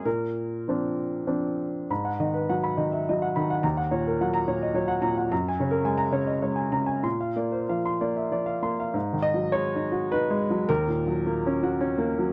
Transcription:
0.05 0.65 A#2 soft
0.05 1.28 A#4 soft
0.68 1.24 F3 soft
0.68 1.24 C4 soft
0.68 1.25 D4 soft
1.27 1.86 F3 soft
1.27 1.85 C4 soft
1.27 1.86 D4 soft
1.90 3.60 G#2 soft
1.90 2.14 B5 soft
2.05 2.28 F#5 soft
2.20 2.67 D#3 soft
2.20 2.43 D#5 soft
2.34 2.58 B4 soft
2.49 2.95 F#3 soft
2.49 2.72 F#5 soft
2.63 2.87 B5 soft
2.77 3.23 D#3 soft
2.77 3.01 D#5 soft
2.92 3.06 E5 soft
3.09 3.53 F#3 soft
3.09 3.31 D#5 soft
3.22 3.44 F#5 soft
3.36 3.64 D#3 soft
3.36 3.58 B5 soft
3.50 3.64 F#5 soft
3.63 5.27 D#2 soft
3.63 3.86 A#5 soft
3.77 4.00 F#5 soft
3.91 4.36 A#2 soft
3.91 4.14 C#5 soft
4.07 4.29 A#4 soft
4.21 4.65 F#3 soft
4.21 4.43 F#5 soft
4.33 4.56 A#5 soft
4.48 4.92 A#2 soft
4.48 4.70 C#5 soft
4.63 4.76 D#5 soft
4.74 5.20 F#3 soft
4.74 4.98 C#5 soft
4.88 5.11 F#5 soft
5.02 5.30 A#2 soft
5.02 5.25 A#5 soft
5.18 5.31 F#5 soft
5.32 7.01 F#2 soft
5.32 5.53 A#5 soft
5.49 5.68 G#5 soft
5.60 6.03 C#3 soft
5.60 5.81 C#5 soft
5.71 5.93 A#4 soft
5.85 6.30 G#3 soft
5.85 6.08 G#5 soft
5.97 6.21 A#5 soft
6.12 6.60 C#3 soft
6.12 6.36 C#5 soft
6.27 6.42 D#5 soft
6.42 6.91 G#3 soft
6.42 6.67 C#5 soft
6.56 6.81 G#5 soft
6.72 7.04 C#3 soft
6.72 6.98 A#5 soft
6.86 7.04 G#5 soft
7.03 8.90 A#2 soft
7.03 7.30 C6 soft
7.21 7.47 F5 soft
7.36 7.88 A#3 soft
7.36 7.63 D5 soft
7.52 7.78 C5 soft
7.69 8.20 F3 soft
7.69 7.95 F5 soft
7.85 8.11 C6 soft
8.01 8.52 A#3 soft
8.01 8.26 D5 soft
8.16 8.32 E5 soft
8.31 8.82 F3 soft
8.31 8.58 D5 soft
8.46 8.72 F5 soft
8.62 8.94 A#3 soft
8.62 8.88 C6 soft
8.80 8.95 F5 soft
8.94 10.64 G#2 soft
9.13 9.45 D#3 soft
9.22 9.53 D#5 medium
9.34 9.65 F#3 soft
9.52 9.84 G#3 soft
9.52 10.10 C#5 medium
9.75 10.05 D#4 soft
9.92 10.22 F#4 soft
10.12 10.42 D#4 soft
10.12 10.69 B4 medium
10.31 10.61 G#3 soft
10.50 10.69 F#3 soft
10.69 12.33 D#2 medium
10.69 12.10 A#4 medium
10.88 11.19 A#2 soft
11.07 11.38 F#3 soft
11.26 11.56 A#3 soft
11.46 11.75 C#4 soft
11.63 11.93 F#4 medium
11.81 12.11 C#4 medium
11.98 12.29 A#3 medium
12.18 12.33 F#3 soft

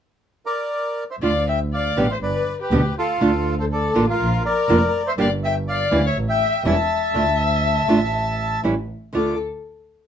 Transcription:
0.46 1.04 A#4 soft
0.46 1.04 D5 medium
1.11 1.16 C5 soft
1.11 1.16 E5 medium
1.21 1.93 D2 medium
1.21 1.30 D3 medium
1.21 1.30 A3 medium
1.21 1.31 D4 medium
1.21 1.31 F4 medium
1.21 1.45 D5 medium
1.21 1.48 F5 medium
1.48 1.59 E5 medium
1.48 1.59 E5 soft
1.48 1.60 G5 medium
1.73 2.07 D5 soft
1.73 2.08 D5 medium
1.73 2.11 F5 medium
1.96 2.17 A1 medium
1.96 2.05 B2 medium
1.96 2.06 D3 medium
1.96 2.06 G3 medium
1.96 2.06 B3 medium
1.96 2.06 G4 medium
2.10 2.15 C5 soft
2.10 2.17 C5 medium
2.10 2.16 E5 medium
2.21 2.42 G1 medium
2.21 2.57 B4 soft
2.21 2.58 B4 medium
2.21 2.57 D5 medium
2.61 2.94 G4 medium
2.61 2.95 G4 medium
2.61 2.95 B4 medium
2.71 2.92 D2 medium
2.71 2.80 B2 medium
2.71 2.80 D3 medium
2.71 2.80 G3 medium
2.71 2.80 B3 medium
2.71 2.81 G4 medium
2.98 3.55 F4 medium
2.98 3.55 A4 medium
3.20 3.91 D2 medium
3.20 3.30 D3 medium
3.20 3.30 A3 medium
3.20 3.30 D4 medium
3.20 3.30 F4 medium
3.59 3.65 A4 soft
3.59 3.66 A4 medium
3.59 3.65 C5 medium
3.72 4.06 A4 medium
3.72 4.06 D5 medium
3.94 4.16 A1 medium
3.94 4.03 D3 medium
3.94 4.04 A#3 medium
3.94 4.04 D4 medium
3.94 4.04 F4 medium
4.09 4.42 F4 medium
4.09 4.43 F4 medium
4.09 4.43 A#4 medium
4.20 4.40 A#1 medium
4.45 5.02 A#4 medium
4.45 5.03 A#4 medium
4.45 5.08 D5 medium
4.68 4.90 F1 medium
4.68 4.78 D3 medium
4.68 4.78 A#3 medium
4.68 4.78 D4 medium
4.68 4.78 F4 medium
5.07 5.12 C5 soft
5.07 5.14 C5 medium
5.07 5.13 E5 medium
5.17 5.88 G1 medium
5.17 5.27 D3 medium
5.17 5.27 G3 medium
5.17 5.27 A#3 medium
5.17 5.27 D4 medium
5.17 5.27 G4 medium
5.17 5.29 D5 medium
5.17 5.31 D5 medium
5.17 5.30 F5 medium
5.43 5.54 E5 medium
5.43 5.56 E5 medium
5.43 5.56 G5 medium
5.68 6.02 D5 medium
5.68 6.03 D5 medium
5.68 6.06 F5 medium
5.91 6.12 D2 medium
5.91 6.00 E3 medium
5.91 6.01 G3 medium
5.91 6.01 C#4 medium
5.91 6.01 E4 medium
6.06 6.17 C#5 medium
6.06 6.18 E5 medium
6.16 6.37 A1 medium
6.29 6.63 E5 medium
6.29 6.64 G5 medium
6.64 6.86 E1 medium
6.64 6.74 E3 medium
6.64 6.74 G3 medium
6.64 6.74 C#4 medium
6.64 6.75 E4 medium
6.64 8.60 E5 medium
6.64 8.61 E5 medium
6.64 8.61 A5 medium
7.14 7.85 D2 medium
7.14 7.23 D3 medium
7.14 7.23 A3 medium
7.14 7.24 D4 medium
7.14 7.24 F4 medium
7.88 8.60 A1 medium
7.88 7.97 D3 medium
7.88 7.98 A3 medium
7.88 7.98 D4 medium
7.88 7.98 F4 medium
8.63 8.85 A1 medium
8.63 8.73 E3 medium
8.63 8.73 G3 medium
8.63 8.73 C#4 medium
8.63 8.74 E4 medium
9.13 9.35 D2 soft
9.13 9.33 D3 medium
9.13 9.34 A3 medium
9.13 9.34 D4 medium
9.13 9.34 F4 medium
9.13 9.38 A4 medium
9.13 9.38 D6 medium

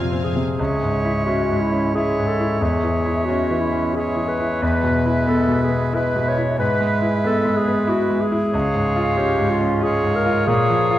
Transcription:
0.00 0.34 F2 soft
0.00 0.55 F2 soft
0.00 0.61 A#2 soft
0.00 0.36 C3 soft
0.00 0.62 A#3 soft
0.00 0.12 C4 soft
0.00 0.35 C4 soft
0.00 0.21 F4 soft
0.00 0.36 F5 soft
0.00 0.35 G#5 soft
0.12 0.50 C4 soft
0.24 1.28 G#4 medium
0.36 0.59 C3 soft
0.59 2.58 C#2 soft
0.59 1.92 G#3 soft
0.59 1.92 C#5 soft
0.59 1.92 E5 medium
0.82 1.18 G#2 soft
1.05 1.41 E4 soft
1.27 1.64 C#4 soft
1.27 1.62 F#4 medium
1.50 1.86 G#2 soft
1.61 1.94 E4 medium
1.72 2.08 C#4 soft
1.95 2.60 G#3 soft
1.95 2.31 E4 soft
1.95 2.29 G#4 medium
1.95 2.61 C#5 soft
1.95 2.61 E5 soft
2.19 2.53 G#2 soft
2.27 2.62 A4 medium
2.40 2.62 E4 soft
2.60 4.58 E2 soft
2.60 3.93 G#3 soft
2.60 3.27 G#4 medium
2.60 3.94 C#5 soft
2.60 3.93 E5 medium
2.83 3.19 E3 soft
3.05 3.41 E4 soft
3.26 3.65 C#4 soft
3.26 3.62 F#4 medium
3.50 3.86 E3 soft
3.60 3.96 E4 medium
3.73 4.09 C#4 soft
3.94 4.61 G#3 soft
3.94 4.30 E4 soft
3.94 4.30 G#4 medium
3.94 4.61 C#5 soft
3.94 4.61 E5 soft
4.16 4.52 E3 soft
4.29 5.28 B4 medium
4.40 4.62 E4 soft
4.62 6.56 E2 soft
4.62 5.93 G#3 soft
4.62 5.93 B4 soft
4.62 5.92 E5 medium
4.83 5.19 B2 soft
5.06 5.42 E4 soft
5.27 5.63 B3 soft
5.27 5.61 A4 medium
5.48 5.85 B2 soft
5.63 5.97 G#4 medium
5.69 6.06 B3 soft
5.93 6.59 G#3 soft
5.93 6.29 E4 soft
5.93 6.30 B4 medium
5.93 6.42 B4 soft
5.93 6.58 E5 soft
6.16 6.51 B2 soft
6.28 6.59 C#5 medium
6.37 6.60 E4 soft
6.58 8.49 G#2 soft
6.58 8.24 G#3 soft
6.58 8.23 B4 soft
6.58 7.01 B4 medium
6.58 8.24 E5 medium
6.80 7.16 G#3 soft
7.02 7.37 E4 soft
7.24 7.59 B3 soft
7.24 7.58 A4 medium
7.45 7.80 G#3 soft
7.57 7.91 G#4 medium
7.67 8.02 B3 soft
7.87 8.23 E4 medium
7.87 8.23 F#4 medium
8.10 8.45 G#3 soft
8.21 9.19 G#4 medium
8.32 8.54 E4 soft
8.53 10.44 C#2 soft
8.53 9.80 G#3 medium
8.53 9.79 C#5 medium
8.53 9.79 F5 medium
8.75 9.09 G#2 soft
8.96 9.31 F4 soft
9.17 9.53 C#4 soft
9.17 9.52 G4 medium
9.38 9.74 G#2 soft
9.50 9.84 F4 medium
9.60 9.96 C#4 soft
9.81 10.50 G#3 medium
9.81 10.17 F4 medium
9.81 10.17 G#4 medium
9.81 10.47 C#5 medium
9.81 10.47 F5 soft
10.03 10.38 G#2 soft
10.16 10.47 A#4 medium
10.26 10.48 F4 medium
10.47 10.99 A#2 medium
10.47 10.99 A#3 medium
10.47 10.99 G#4 medium
10.47 10.99 C#5 medium
10.47 10.99 F5 medium
10.70 10.99 F3 soft
10.91 10.99 F4 medium

